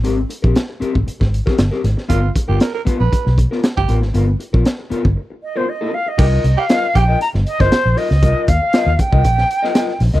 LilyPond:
<<
  \new Staff \with { instrumentName = "Flute" } { \time 4/4 \key g \minor \tempo 4 = 118 r1 | r1 | r2 r8 ees''16 c''16 ees''8 f''16 ees''16~ | ees''8. f''8. g''8 bes''8 ees''16 c''8. ees''8~ |
ees''8 f''4 g''2 r8 | }
  \new Staff \with { instrumentName = "Clean electric guitar" } { \time 4/4 \key g \minor <c' g' bes'>16 r8 <c' g' bes'>16 r8 <c' g' bes'>16 r4 <c' g' bes'>16 r16 <c' g' bes'>16 r8 | <b f' ais'>16 r8 <b f' ais'>16 r8 <b f' b'>16 r4 <b f' ais'>16 r8 <b f' ais'>16 r16 | <b f' ais'>16 r8 <b f' ais'>16 r8 <b f' ais'>16 r4 <b f' ais'>16 r16 <b f' ais'>8 r16 | <f' bes' ees''>8 r8 <f' bes' ees''>16 r8 <f' bes' ees''>16 r8. <f' bes' ees''>16 r8 <f' bes' ees''>16 r16 |
<f' bes' ees''>8 r8 <f' bes' ees''>16 r8 <f' bes' ees''>16 r8. <f' bes' ees''>16 <f' bes' ees''>16 r8 <f' bes' ees''>16 | }
  \new Staff \with { instrumentName = "Tenor saxophone" } { \time 4/4 \key g \minor r1 | f'8 r16 g'16 ais'16 ais'16 r16 b'8. r8. g'8 r16 | r1 | g'16 r8 g'16 r8 g'16 r2 r16 |
r1 | }
  \new Staff \with { instrumentName = "Fingered electric bass" } { \clef bass \time 4/4 \key g \minor aes,,8 r16 bes,,16 r8. aes,,16 r16 aes,,8 r16 g,,16 r16 aes,,16 r16 | g,,8 r16 g,,16 r8. ais,,16 r16 b,,8 r8 g,,16 a,,16 aes,,16 | g,,8 r16 ais,,16 r8. g,,16 r2 | c,8 c,16 r8. bes,,8 r16 g,,16 r16 g,,16 r16 bes,,16 r16 des,16 |
c,16 r16 ees,16 r8 ees,16 r16 c,16 bes,,8 r4 bes,,16 des,16 | }
  \new DrumStaff \with { instrumentName = "Drums" } \drummode { \time 4/4 hh8 hh16 bd16 <hh sn>8 hh16 bd16 hh16 <bd sn>16 hh16 <bd sn>16 <hh sn>16 sn16 <hh sn>16 sn16 | <hh bd>8 <hh bd>8 <hh sn>8 <hh bd>8 <hh bd>16 sn16 <hh bd>16 sn16 <hh sn>16 bd16 hh16 sn16 | hh8 hh16 bd16 <hh sn>8 hh16 bd16 r4 r4 | <cymc bd>8 hh8 <hh sn>8 <hh bd>8 hh16 sn16 hh16 <bd sn>16 <hh sn>8 hho16 sn16 |
<hh bd>8 <hh bd>8 <hh sn>8 <hh bd>16 bd16 <hh bd>16 sn16 hh16 sn16 <hh sn>16 sn16 <hho sn>16 sn16 | }
>>